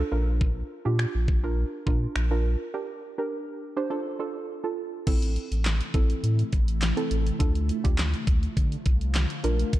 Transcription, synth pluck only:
0.00 0.10 D4 medium
0.00 0.10 F4 medium
0.00 0.12 A4 loud
0.12 0.70 D4 medium
0.12 0.70 F4 medium
0.12 0.70 A#4 loud
0.85 1.30 D4 medium
0.85 1.30 F4 medium
0.85 1.30 G4 loud
1.43 1.78 D4 medium
1.43 1.78 F4 medium
1.43 1.78 A#4 loud
1.86 2.21 D4 medium
1.86 2.21 F4 medium
1.86 2.21 A#4 medium
2.31 2.65 D4 medium
2.31 2.65 F4 medium
2.31 2.65 A#4 loud
2.74 3.08 D4 medium
2.74 3.09 G4 medium
2.74 3.09 A#4 medium
3.18 3.63 D4 medium
3.18 3.63 G4 medium
3.18 3.63 A#4 medium
3.77 3.89 D4 medium
3.77 3.90 G4 medium
3.77 3.91 C5 loud
3.90 4.14 D4 medium
3.90 4.14 F4 medium
3.90 4.14 A4 loud
4.19 4.54 D4 medium
4.19 4.54 F4 medium
4.19 4.54 A4 medium
4.64 4.98 D4 medium
4.64 4.98 F4 medium
4.64 4.98 A4 loud
5.07 5.76 C4 medium
5.07 5.76 E4 medium
5.07 5.76 A4 loud
5.94 6.74 C4 medium
5.94 6.75 E4 medium
5.94 6.75 A4 loud
6.97 7.31 C4 medium
6.97 7.31 E4 medium
6.97 7.31 A4 medium
7.39 7.74 D4 medium
7.39 7.74 F4 medium
7.39 7.75 A4 loud
7.84 8.75 D4 medium
7.84 8.75 F4 medium
7.84 8.76 G4 medium
9.44 9.80 D4 medium
9.44 9.80 F4 medium
9.44 9.80 A#4 loud

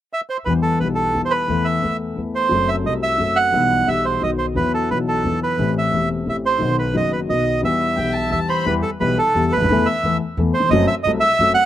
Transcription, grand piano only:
0.46 0.80 E2 soft
0.46 0.47 E3 soft
0.46 0.78 E3 soft
0.46 0.80 G3 soft
0.46 0.80 B3 soft
0.50 0.81 G4 soft
0.80 1.14 B1 soft
0.80 1.14 B2 soft
0.80 1.12 E3 soft
0.80 1.13 G3 soft
0.80 1.14 B3 soft
0.84 1.15 G4 soft
1.13 1.48 E2 soft
1.13 1.46 E3 soft
1.13 1.47 G3 soft
1.13 1.48 B3 soft
1.13 1.49 G4 soft
1.47 1.82 E2 medium
1.47 1.80 E3 soft
1.47 1.81 A3 soft
1.47 1.82 B3 soft
1.47 1.83 A4 soft
1.81 2.15 E2 soft
1.81 2.14 E3 soft
1.81 2.15 A3 soft
1.81 2.16 B3 soft
1.81 2.16 A4 soft
2.16 2.50 E2 soft
2.16 2.50 E3 soft
2.16 2.49 A3 soft
2.16 2.50 B3 soft
2.16 2.51 A4 soft
2.49 2.83 F#2 medium
2.49 2.50 F#3 soft
2.49 2.82 F#3 medium
2.49 2.83 A3 soft
2.49 2.84 C4 soft
2.53 2.84 A4 soft
2.83 3.18 C2 soft
2.83 3.18 C3 soft
2.83 3.16 F#3 soft
2.83 3.17 A3 soft
2.83 3.18 C4 soft
2.88 3.19 A4 soft
3.18 3.52 F#2 soft
3.18 3.52 F#3 soft
3.18 3.52 A3 soft
3.18 3.52 C4 soft
3.18 3.53 A4 soft
3.52 3.86 B1 soft
3.52 3.86 B2 medium
3.52 3.84 E3 soft
3.52 3.86 G3 soft
3.52 3.86 B3 soft
3.52 3.87 G4 soft
3.85 4.20 B1 soft
3.85 4.20 B2 soft
3.85 4.19 E3 soft
3.85 4.20 G3 soft
3.85 4.21 B3 soft
3.90 4.21 G4 soft
4.21 4.55 B1 soft
4.21 4.55 B2 soft
4.21 4.54 D#3 soft
4.21 4.54 F#3 soft
4.21 4.55 B3 soft
4.21 4.56 F#4 soft
4.56 4.89 E2 soft
4.56 4.88 E3 soft
4.56 4.89 F#3 soft
4.56 4.89 B3 soft
4.56 4.90 F#4 soft
4.90 5.24 B1 soft
4.90 5.24 B2 soft
4.90 5.22 E3 soft
4.90 5.23 F#3 soft
4.90 5.24 B3 soft
4.90 5.25 F#4 soft
5.25 5.57 E2 soft
5.25 5.56 E3 soft
5.25 5.57 F#3 soft
5.25 5.58 B3 soft
5.25 5.58 F#4 soft
5.57 5.92 A1 medium
5.57 5.92 A2 medium
5.57 5.90 E3 soft
5.57 5.91 A3 soft
5.57 5.92 C4 soft
5.61 5.93 G4 soft
5.91 6.26 E1 soft
5.91 6.26 E2 soft
5.91 6.23 E3 soft
5.91 6.24 A3 soft
5.91 6.26 C4 soft
5.95 6.27 G4 soft
6.24 6.59 A1 soft
6.24 6.59 A2 soft
6.24 6.58 E3 soft
6.24 6.59 A3 soft
6.24 6.59 C4 soft
6.29 6.60 G4 soft
6.58 6.93 B1 medium
6.58 6.93 B2 medium
6.58 6.92 D#3 soft
6.58 6.93 F#3 soft
6.58 6.93 B3 soft
6.63 6.94 F#4 soft
6.93 7.27 F#1 soft
6.93 7.27 F#2 soft
6.93 7.26 D#3 soft
6.93 7.27 F#3 soft
6.93 7.28 B3 soft
6.93 7.28 F#4 soft
7.28 7.62 B1 soft
7.28 7.62 B2 soft
7.28 7.61 D#3 soft
7.28 7.62 F#3 soft
7.28 7.62 B3 soft
7.28 7.63 F#4 soft
7.63 7.96 E2 medium
7.63 7.94 E3 medium
7.63 7.95 G3 soft
7.63 7.96 B3 soft
7.63 7.97 G4 soft
7.96 8.30 B1 soft
7.96 8.30 B2 soft
7.96 8.28 E3 soft
7.96 8.29 G3 soft
7.96 8.30 B3 soft
7.96 8.31 G4 soft
8.29 8.64 E2 soft
8.29 8.64 E3 soft
8.29 8.64 G3 soft
8.29 8.64 B3 soft
8.29 8.65 G4 soft
8.66 8.81 E2 medium
8.66 8.81 E3 medium
8.66 8.81 G3 medium
8.66 8.81 B3 medium
8.66 8.81 G4 medium
9.00 9.15 B1 soft
9.00 9.15 B2 soft
9.00 9.15 E3 soft
9.00 9.15 G3 soft
9.00 9.15 B3 soft
9.00 9.15 G4 soft
9.35 9.49 E2 soft
9.35 9.49 E3 soft
9.35 9.49 G3 soft
9.35 9.50 B3 soft
9.35 9.50 G4 soft
9.57 9.61 C#2 soft
9.61 9.65 D2 medium
9.65 9.69 D#2 medium
9.71 9.84 E2 medium
9.71 9.84 E3 medium
9.71 9.84 A3 medium
9.71 9.84 B3 medium
9.71 9.84 A4 medium
10.05 10.18 E2 medium
10.05 10.18 E3 soft
10.05 10.18 A3 soft
10.05 10.18 B3 soft
10.05 10.18 A4 medium
10.38 10.52 E2 soft
10.38 10.52 E3 soft
10.38 10.52 A3 soft
10.38 10.52 B3 soft
10.38 10.52 A4 soft
10.59 10.63 D#2 soft
10.64 10.67 E2 medium
10.69 10.72 F2 medium
10.69 10.86 F#3 medium
10.69 10.86 A3 medium
10.69 10.86 C4 medium
10.73 10.86 F#2 medium
10.73 10.86 A4 medium
11.07 11.20 C2 medium
11.07 11.20 C3 medium
11.07 11.20 F#3 soft
11.07 11.20 A3 soft
11.07 11.20 C4 soft
11.07 11.20 A4 medium
11.40 11.54 F#2 soft
11.40 11.54 F#3 soft
11.40 11.54 A3 soft
11.40 11.54 C4 soft
11.40 11.54 A4 soft

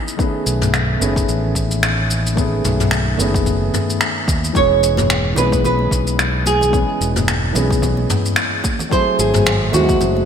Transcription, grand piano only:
0.00 0.15 E3 medium
0.00 0.15 B3 medium
0.00 0.20 C#4 medium
0.00 0.20 D#4 medium
0.00 0.20 G#4 loud
0.17 0.97 D#3 medium
0.17 0.97 A3 medium
0.17 0.98 B3 medium
0.17 0.99 C#4 medium
0.22 0.99 G#4 medium
0.98 2.33 D#3 medium
0.98 2.34 A3 medium
0.98 2.34 B3 medium
1.02 2.35 C#4 medium
1.02 2.36 G#4 loud
2.34 3.15 D#3 medium
2.34 3.15 A3 medium
2.34 3.16 B3 medium
2.38 3.17 C#4 medium
2.38 3.18 G#4 medium
3.16 4.51 D#3 medium
3.16 4.52 A3 medium
3.16 4.52 B3 medium
3.20 4.53 C#4 medium
3.20 4.54 G#4 loud
4.52 5.33 E3 medium
4.52 5.34 G#3 medium
4.52 5.34 B3 medium
4.57 5.35 C#4 medium
4.57 5.36 G#4 medium
5.34 6.69 E3 medium
5.34 6.70 G#3 medium
5.34 6.71 B3 medium
5.38 6.71 C#4 medium
5.38 6.72 G#4 loud
6.70 7.50 E3 medium
6.70 7.52 G#3 medium
6.70 7.52 B3 medium
6.75 7.53 C#4 medium
6.75 7.54 G#4 medium
7.52 8.61 E3 medium
7.52 8.62 G#3 medium
7.52 8.63 B3 medium
7.56 8.63 C#4 medium
7.56 8.64 G#4 loud
8.89 9.69 F#3 medium
8.89 9.70 A3 medium
8.89 9.71 C4 medium
8.93 9.71 E4 medium
8.93 9.72 G#4 loud
9.70 10.25 F#3 medium
9.70 10.25 A3 medium
9.70 10.25 C4 medium
9.74 10.25 G#3 loud
9.74 10.25 E4 medium

